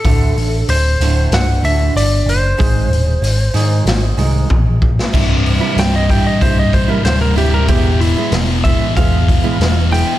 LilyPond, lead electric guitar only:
\new Staff \with { instrumentName = "Lead electric guitar" } { \time 4/4 \key d \minor \tempo 4 = 94 a'4 c''4 fis''8 e''8 d''8 c''8~ | c''2. r4 | r4 g''16 ees''16 g''16 ees''16 c''16 ees''16 c''16 bes'16 c''16 bes'16 g'16 bes'16 | g'8 e'8 r8 e''8 f''4. g''8 | }